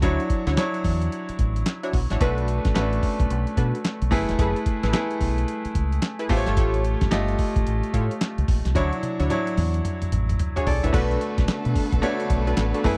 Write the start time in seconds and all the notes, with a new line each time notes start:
0.02 D2 F#3 D4 E4 F#4 C#5, kick, closed hi-hat
0.20 closed hi-hat
0.30 kick, closed hi-hat
0.47 D2 D4 E4 F#4 C#5, snare, closed hi-hat
0.57 F#3 D4 E4 C#5, snare, clap, closed hi-hat
0.74 closed hi-hat
0.84 E2, kick, open hi-hat
1.02 closed hi-hat
1.12 closed hi-hat
1.29 muted fingered electric bass stroke, closed hi-hat
1.39 A1, kick, closed hi-hat
1.56 closed hi-hat
1.66 snare, clap, closed hi-hat
1.83 D4 E4 F#4 C#5, closed hi-hat
1.93 B1, kick, open hi-hat
2.10 A1 D4 E4 F#4 C#5, snare, closed hi-hat
2.21 B1 A3 D4 F#4 A4 B4, kick, closed hi-hat
2.38 closed hi-hat
2.48 closed hi-hat
2.65 A1, kick, snare, closed hi-hat
2.75 A1 A3 C#4 F#4 B4, snare, clap, closed hi-hat
2.82 D4
2.93 closed hi-hat
3.03 kick, open hi-hat
3.20 B1, kick, closed hi-hat
3.30 B1, closed hi-hat
3.47 closed hi-hat
3.57 B2 D4 F#4 A4 B4, kick, closed hi-hat
3.75 closed hi-hat
3.84 snare, clap, closed hi-hat
4.02 B1, closed hi-hat
4.11 F#1 A3 E4 G#4 B4, kick, open hi-hat
4.29 E1, snare, closed hi-hat
4.39 F#1 E4 G#4 A4 B4, kick, closed hi-hat
4.56 closed hi-hat
4.66 kick, closed hi-hat
4.83 A1 E4 G#4 A4 B4, snare, closed hi-hat
4.93 A3 E4 G#4 B4, snare, clap, closed hi-hat
5.11 closed hi-hat
5.21 B1, kick, open hi-hat
5.38 closed hi-hat
5.48 closed hi-hat
5.65 muted fingered electric bass stroke, closed hi-hat
5.75 C#2, kick, closed hi-hat
5.92 closed hi-hat
6.02 snare, clap, closed hi-hat
6.19 E4 G#4 A4 B4, closed hi-hat
6.29 A1 A3 F4 G4 C5, kick, open hi-hat
6.37 C#5
6.46 G1 F4 G4 A4 C#5, snare, closed hi-hat
6.57 A1 F4 G4 A4 C#5, kick, closed hi-hat
6.74 closed hi-hat
6.84 closed hi-hat
7.01 G1, kick, snare, closed hi-hat
7.11 G1 A3 F4 G4 D#5, snare, clap, closed hi-hat
7.28 closed hi-hat
7.39 kick, open hi-hat
7.56 A1, kick, closed hi-hat
7.67 A1, closed hi-hat
7.83 closed hi-hat
7.93 A2 F4 G4 A4 C#5, kick, closed hi-hat
8.11 closed hi-hat
8.21 snare, clap, closed hi-hat
8.38 C#2, closed hi-hat
8.48 A#1, kick, open hi-hat
8.65 C2, snare, closed hi-hat
8.75 D2 F#3 D4 E4 F#4 C#5, kick, closed hi-hat, high tom
8.93 closed hi-hat
9.03 closed hi-hat, high tom
9.19 D2 D4 E4 F#4 C#5, closed hi-hat
9.30 F#3 D4 E4 C#5, closed hi-hat, mid tom
9.47 closed hi-hat
9.57 E2, open hi-hat, mid tom
9.74 closed hi-hat
9.85 closed hi-hat, mid tom
10.02 muted fingered electric bass stroke, closed hi-hat, mid tom
10.12 A1, closed hi-hat, mid tom
10.29 closed hi-hat, mid tom
10.39 closed hi-hat, floor tom
10.56 D4 E4 F#4 G#4 C#5, closed hi-hat, floor tom
10.67 B1 A4 D5, floor tom, open hi-hat
10.83 A1 D4 E4 F#4 B4 C#5 E5, closed hi-hat, floor tom
10.93 B1 D3 A3 B3 D4 F#4 A4 B4, kick, closed hi-hat, crash
11.11 closed hi-hat
11.21 closed hi-hat
11.38 B1, kick, snare, closed hi-hat
11.48 muted fingered electric bass stroke, snare, clap, closed hi-hat
11.65 B2, closed hi-hat
11.76 kick, open hi-hat
11.92 B1, kick, closed hi-hat
12.02 A3 D4 F#4 A4 B4 C#5, closed hi-hat
12.20 closed hi-hat
12.30 B1, kick, closed hi-hat
12.47 D4 F#4 A4 B4, closed hi-hat
12.57 A1, snare, clap, closed hi-hat
12.74 D4 F#4 A4 B4, closed hi-hat
12.84 F#1 E3 A3 E4 G#4 B4, kick, open hi-hat